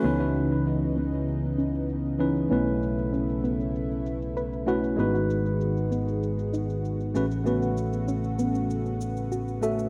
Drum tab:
SH |x-xxxxxxxxxxxxxx|xxxxxxxxxxxxxxxx|xxxxxxxxxxxxxxxx|xxxxxxxxxxxxxxxx|